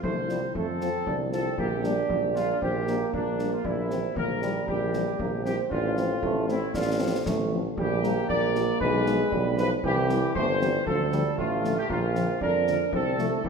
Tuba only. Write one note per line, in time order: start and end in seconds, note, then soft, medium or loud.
0.03 0.46 C2 soft
0.55 0.98 F2 soft
1.07 1.50 C2 soft
1.58 2.01 A#1 medium
2.10 2.53 A#1 soft
2.62 3.05 A#1 medium
3.13 3.56 A#1 soft
3.65 4.08 A#1 medium
4.16 4.59 A#1 soft
4.68 5.11 A#1 medium
5.20 5.59 A#1 soft
5.71 6.14 A1 medium
6.23 6.66 A1 medium
6.75 7.17 A1 medium
7.26 7.69 A1 soft
7.78 8.21 A#1 medium
8.30 8.72 A#1 medium
8.81 9.24 B1 medium
9.32 9.75 B1 medium
9.84 10.27 C2 medium
10.35 10.78 G1 medium
10.87 11.30 D2 medium
11.39 11.77 A1 medium
11.90 12.33 A#1 medium
12.41 12.84 F2 medium
12.93 13.36 C2 medium
13.45 13.49 C2 soft